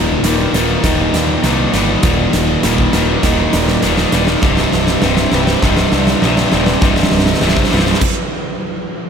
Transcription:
0.00 0.15 D#1 medium
0.00 0.23 D#2 loud
0.00 1.14 D#2 medium
0.00 0.23 A#2 medium
0.00 0.24 D#3 loud
0.00 0.24 D5 medium
0.23 0.45 D#1 medium
0.23 0.53 D#2 medium
0.23 0.53 A#2 medium
0.23 0.54 D#3 medium
0.23 1.14 G3 medium
0.23 0.84 A#4 medium
0.23 snare medium
0.23 closed hi-hat medium
0.53 0.75 D#1 medium
0.53 0.82 D#2 medium
0.53 0.83 A#2 medium
0.53 0.83 D#3 medium
0.53 2.04 A#3 medium
0.53 snare medium
0.53 closed hi-hat medium
0.83 1.05 D#1 medium
0.83 1.42 D#2 medium
0.83 1.43 A#2 medium
0.83 2.34 D#3 medium
0.83 1.43 D#3 medium
0.83 1.14 D#5 medium
0.83 kick medium
0.83 snare medium
0.83 closed hi-hat medium
1.13 1.35 D#2 medium
1.13 1.73 G3 medium
1.13 1.73 D5 medium
1.13 snare medium
1.13 closed hi-hat medium
1.43 1.65 C2 medium
1.43 1.72 D#2 medium
1.43 1.73 A#2 medium
1.43 1.73 D#3 medium
1.43 2.93 D4 medium
1.43 snare medium
1.43 closed hi-hat medium
1.73 1.95 G1 medium
1.73 2.02 D#2 medium
1.73 2.03 A#2 medium
1.73 2.03 D#3 medium
1.73 2.63 G3 medium
1.73 2.03 D5 medium
1.73 snare medium
1.73 closed hi-hat medium
2.03 2.25 D#1 medium
2.03 3.53 D#2 medium
2.03 2.62 D#2 medium
2.03 2.63 A#2 loud
2.03 2.63 D#3 medium
2.03 2.64 D5 medium
2.03 kick loud
2.03 snare medium
2.03 closed hi-hat loud
2.33 2.55 D#1 medium
2.33 snare medium
2.33 closed hi-hat medium
2.63 2.85 D#1 medium
2.63 2.92 D#2 medium
2.63 2.93 A#2 medium
2.63 2.93 D#3 medium
2.63 3.53 G3 medium
2.63 3.24 A#4 medium
2.63 snare medium
2.63 closed hi-hat medium
2.78 kick medium
2.93 3.15 D#1 medium
2.93 3.22 D#2 medium
2.93 3.23 A#2 medium
2.93 3.23 D#3 medium
2.93 4.43 A#3 medium
2.93 snare medium
2.93 closed hi-hat medium
3.23 3.45 D#1 medium
3.23 3.82 D#2 medium
3.23 3.82 A#2 medium
3.23 4.43 D#3 medium
3.23 3.83 D#3 medium
3.23 3.54 D#5 medium
3.23 kick medium
3.23 snare medium
3.23 closed hi-hat medium
3.53 3.75 D#1 medium
3.53 4.13 G3 medium
3.53 4.12 D5 medium
3.53 snare medium
3.53 closed hi-hat medium
3.68 snare medium
3.83 4.05 D#1 medium
3.83 4.11 D#2 medium
3.83 4.12 A#2 medium
3.83 4.13 D#3 medium
3.83 4.43 D4 medium
3.83 snare medium
3.83 closed hi-hat medium
3.97 snare medium
4.12 4.34 D#1 medium
4.12 4.41 D#2 medium
4.12 4.41 A#2 medium
4.12 4.42 D#3 loud
4.12 5.32 G3 medium
4.12 4.43 D5 medium
4.12 snare medium
4.12 closed hi-hat medium
4.27 snare medium
4.42 4.64 C1 medium
4.42 5.03 C2 medium
4.42 5.93 C2 medium
4.42 5.03 G2 loud
4.42 5.04 C3 loud
4.42 5.03 D#5 medium
4.42 kick loud
4.42 snare medium
4.57 snare medium
4.72 4.94 C1 medium
4.72 snare medium
4.87 snare medium
5.02 5.24 C1 medium
5.02 5.32 C2 medium
5.02 5.32 G2 medium
5.02 5.91 C3 medium
5.02 5.33 C3 loud
5.02 5.63 C5 medium
5.02 snare loud
5.17 snare loud
5.31 5.54 C1 medium
5.31 5.61 C2 medium
5.31 5.62 G2 medium
5.31 5.62 C3 loud
5.31 6.82 G3 medium
5.31 snare loud
5.47 snare loud
5.62 5.84 C1 medium
5.62 6.21 C2 medium
5.62 7.11 G2 medium
5.62 6.21 G2 medium
5.62 6.22 C3 medium
5.62 kick medium
5.62 snare medium
5.77 snare loud
5.92 6.14 C2 medium
5.92 6.50 C3 medium
5.92 6.51 D5 medium
5.92 snare loud
6.07 snare loud
6.22 6.44 A#1 medium
6.22 6.50 C2 medium
6.22 6.51 G2 medium
6.22 6.52 C3 medium
6.22 7.71 D#4 medium
6.22 snare medium
6.37 snare loud
6.51 6.73 D#1 medium
6.51 6.81 C2 medium
6.51 6.81 G2 loud
6.51 7.40 C3 medium
6.51 6.82 C3 medium
6.51 6.82 D5 medium
6.51 snare loud
6.66 snare loud
6.81 7.04 C1 medium
6.81 8.01 C2 medium
6.81 7.40 C2 loud
6.81 7.41 G2 medium
6.81 7.42 C3 loud
6.81 kick loud
6.81 snare medium
6.96 snare loud
7.03 snare loud
7.11 7.33 C1 medium
7.11 snare medium
7.19 snare loud
7.26 snare loud
7.34 snare loud
7.41 7.63 C1 medium
7.41 7.70 C2 medium
7.41 7.70 G2 medium
7.41 8.01 C3 medium
7.41 7.71 C3 medium
7.41 8.01 C5 medium
7.41 snare loud
7.49 snare loud
7.57 kick medium
7.57 snare loud
7.64 snare loud
7.71 7.93 C1 medium
7.71 7.99 C2 medium
7.71 7.99 G2 medium
7.71 8.00 C3 loud
7.71 8.01 G3 medium
7.71 snare loud
7.79 snare loud
7.86 snare loud
7.94 snare loud
8.01 kick loud
8.01 crash medium

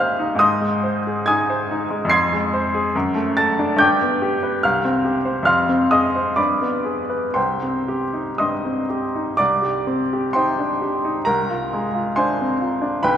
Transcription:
0.00 0.35 D#2 medium
0.00 0.43 G3 soft
0.00 0.44 G4 soft
0.00 0.43 C5 soft
0.00 0.13 D#5 soft
0.00 0.38 F5 medium
0.00 0.44 G5 medium
0.00 0.44 G#5 medium
0.00 0.39 D#6 medium
0.00 0.40 F6 medium
0.00 0.44 G6 medium
0.00 0.43 G#6 medium
0.19 0.41 D#4 soft
0.35 2.06 G#2 medium
0.35 1.26 D#6 medium
0.40 1.25 D#5 medium
0.40 1.25 C6 medium
0.60 0.98 G#3 soft
0.84 1.20 C5 medium
1.07 1.42 G#4 soft
1.26 1.63 D#4 soft
1.26 2.07 G#5 medium
1.26 2.07 D#6 medium
1.26 2.09 G#6 medium
1.50 1.83 C5 medium
1.71 2.04 D#4 medium
1.90 2.12 G#3 soft
2.05 2.88 F2 medium
2.10 3.32 C6 medium
2.10 3.32 G#6 medium
2.10 3.35 C7 medium
2.32 2.65 G#3 soft
2.54 2.86 C5 medium
2.74 2.95 G#4 medium
2.96 3.78 F#2 medium
3.15 3.50 A3 medium
3.37 3.72 A4 soft
3.37 3.77 A5 medium
3.37 3.80 A6 medium
3.59 3.80 D4 soft
3.76 4.59 G2 medium
3.76 4.60 D6 medium
3.76 4.63 G6 medium
3.80 4.60 G5 medium
4.02 4.35 B3 soft
4.22 4.55 G4 medium
4.43 4.64 B4 soft
4.63 5.45 C2 medium
4.63 5.03 F5 medium
4.63 5.05 F6 medium
4.85 5.18 C4 medium
5.04 5.38 G4 soft
5.25 5.47 C5 medium
5.43 6.32 F2 medium
5.43 5.88 F5 medium
5.43 5.90 F6 medium
5.47 5.88 C6 medium
5.69 6.05 C4 soft
5.91 6.28 G#4 soft
5.91 6.35 D#5 medium
5.91 6.37 D#6 medium
6.16 6.38 C5 soft
6.36 7.33 G2 medium
6.36 7.32 D5 soft
6.36 7.32 B5 medium
6.36 7.35 D6 medium
6.62 7.01 B3 soft
6.85 7.25 G#4 soft
7.10 7.36 B4 soft
7.34 9.34 C2 soft
7.34 8.85 C5 soft
7.34 8.85 G5 soft
7.34 8.38 C6 medium
7.62 8.03 C4 soft
7.88 8.29 G4 soft
8.13 8.54 D#4 soft
8.38 8.80 G2 soft
8.38 9.35 D#5 medium
8.38 9.35 C6 soft
8.38 9.39 D#6 medium
8.65 9.05 C4 soft
8.90 9.29 G4 soft
9.15 9.39 D#4 soft
9.37 11.23 C2 medium
9.37 10.30 D5 medium
9.37 10.33 D6 medium
9.62 10.01 G4 soft
9.87 10.25 C4 soft
10.13 10.50 G4 soft
10.33 10.72 D#4 soft
10.33 11.23 C5 medium
10.33 11.23 G5 medium
10.33 11.26 C6 medium
10.59 10.82 D4 soft
10.82 11.18 G4 soft
11.05 11.27 D#4 soft
11.25 12.99 C2 medium
11.25 12.12 A#4 medium
11.25 12.15 A#5 medium
11.50 11.85 F4 soft
11.73 12.08 G#3 soft
11.94 12.29 F4 soft
12.16 12.52 D4 soft
12.16 13.00 C5 medium
12.16 13.00 G#5 medium
12.16 13.03 C6 medium
12.41 12.61 C4 soft
12.61 12.95 F4 soft
12.82 13.03 D4 soft
13.03 13.17 B1 medium
13.03 13.17 B4 medium
13.03 13.17 G5 medium
13.03 13.17 B5 medium

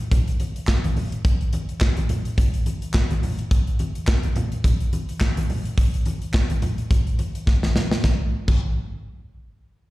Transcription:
0.11 kick loud
0.11 closed hi-hat loud
0.11 low conga medium
0.28 closed hi-hat medium
0.40 closed hi-hat medium
0.40 muted conga soft
0.40 high conga medium
0.56 closed hi-hat medium
0.67 kick loud
0.67 snare loud
0.67 clap medium
0.67 muted conga soft
0.84 closed hi-hat medium
0.84 high conga medium
0.97 open hi-hat medium
0.97 muted conga soft
0.97 low conga medium
1.12 closed hi-hat medium
1.25 kick loud
1.25 closed hi-hat medium
1.25 muted conga soft
1.41 closed hi-hat soft
1.53 closed hi-hat medium
1.53 high conga medium
1.69 closed hi-hat soft
1.81 kick loud
1.81 snare loud
1.81 clap loud
1.81 muted conga soft
1.97 closed hi-hat medium
1.97 high conga medium
2.09 closed hi-hat medium
2.09 low conga medium
2.25 closed hi-hat medium
2.38 kick loud
2.38 closed hi-hat loud
2.38 muted conga soft
2.38 low conga medium
2.54 closed hi-hat medium
2.66 closed hi-hat medium
2.66 muted conga soft
2.66 high conga medium
2.82 closed hi-hat medium
2.94 kick loud
2.94 snare loud
2.94 clap loud
2.94 muted conga soft
3.11 closed hi-hat medium
3.11 high conga medium
3.23 open hi-hat medium
3.23 low conga medium
3.39 closed hi-hat medium
3.51 kick loud
3.51 closed hi-hat medium
3.51 muted conga soft
3.67 closed hi-hat soft
3.79 closed hi-hat medium
3.79 muted conga soft
3.79 high conga medium
3.95 closed hi-hat soft
4.07 kick loud
4.07 snare loud
4.07 clap loud
4.23 closed hi-hat medium
4.23 high conga medium
4.36 closed hi-hat medium
4.36 muted conga soft
4.36 low conga medium
4.52 closed hi-hat medium
4.64 kick loud
4.64 closed hi-hat loud
4.64 muted conga soft
4.64 low conga medium
4.80 closed hi-hat soft
4.93 closed hi-hat medium
4.93 muted conga soft
4.93 high conga medium
5.09 closed hi-hat medium
5.20 kick loud
5.20 snare loud
5.20 clap loud
5.20 muted conga soft
5.37 closed hi-hat medium
5.37 high conga medium
5.50 open hi-hat medium
5.50 low conga medium
5.65 closed hi-hat medium
5.77 kick loud
5.77 closed hi-hat medium
5.77 muted conga soft
5.94 closed hi-hat medium
6.06 closed hi-hat medium
6.06 muted conga soft
6.06 high conga medium
6.22 closed hi-hat soft
6.33 kick loud
6.33 snare loud
6.33 clap loud
6.33 muted conga soft
6.50 closed hi-hat medium
6.50 high conga medium
6.62 closed hi-hat medium
6.62 muted conga soft
6.62 low conga medium
6.78 closed hi-hat soft
6.91 kick loud
6.91 closed hi-hat loud
6.91 muted conga soft
6.91 low conga medium
7.07 closed hi-hat medium
7.19 closed hi-hat medium
7.19 muted conga soft
7.19 high conga medium
7.35 closed hi-hat medium
7.46 kick loud
7.46 snare medium
7.46 muted conga soft
7.63 snare medium
7.63 high conga medium
7.76 snare loud
7.76 low conga medium
7.91 snare loud
8.03 kick loud
8.03 snare medium
8.03 high conga medium
8.48 kick loud
8.48 crash medium
8.48 high conga medium

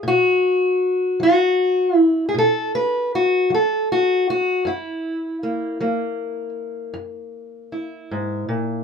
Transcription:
0.03 0.73 B2 medium
0.08 1.21 F#4 medium
1.20 1.89 F#3 medium
1.20 1.96 F#4 medium
1.96 2.28 E4 medium
2.29 2.35 G#4 medium
2.34 3.03 B2 medium
2.38 2.75 A4 loud
2.75 3.12 B4 medium
3.15 3.51 F#4 medium
3.50 4.19 F#3 medium
3.54 3.90 A4 medium
3.92 4.28 F#4 medium
4.30 4.66 F#4 medium
4.65 5.34 F#2 medium
4.65 6.96 E4 medium
5.43 5.80 A#3 soft
5.80 6.49 F#3 medium
5.80 8.84 A#3 soft
6.94 7.63 F#2 medium
7.72 8.84 E4 soft
8.11 8.48 G#2 medium
8.49 8.84 A#2 medium

